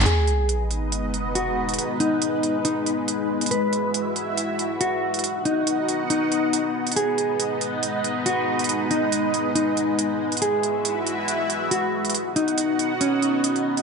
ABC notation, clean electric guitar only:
X:1
M:4/4
L:1/8
Q:"Swing 16ths" 1/4=139
K:G#m
V:1 name="Clean electric guitar"
G3 z3 F2- | F D3 D4 | B3 z3 F2- | F D3 D4 |
G3 z3 F2- | F D3 D4 | G3 z3 F2- | F D3 C4 |]